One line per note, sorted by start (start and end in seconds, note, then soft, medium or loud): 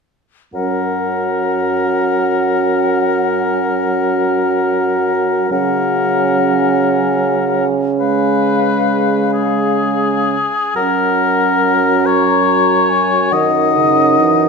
0.54 5.47 F#2 soft
0.54 5.47 F#3 soft
0.54 5.47 C#4 soft
0.54 5.47 A#4 soft
0.54 5.47 F#5 soft
5.51 10.37 C#3 soft
5.51 7.66 F#3 soft
5.51 10.37 C#4 soft
5.51 7.67 A#4 soft
5.51 7.67 F#5 soft
7.98 10.37 G#3 soft
7.98 9.30 B4 soft
7.98 10.36 F5 soft
9.33 10.71 G#4 soft
10.75 13.30 F#2 soft
10.75 13.29 F#3 soft
10.75 13.36 C#4 soft
10.75 12.08 A#4 medium
10.75 12.06 F#5 soft
12.05 13.34 C#5 soft
12.05 12.46 A#5 soft
12.47 12.91 A#5 soft
12.89 13.33 G#5 soft
13.31 14.49 F#2 soft
13.31 13.77 D#3 soft
13.31 14.49 D#4 soft
13.31 14.49 D#5 medium
13.31 14.49 F#5 soft
13.76 14.21 C#3 soft
14.19 14.49 E3 soft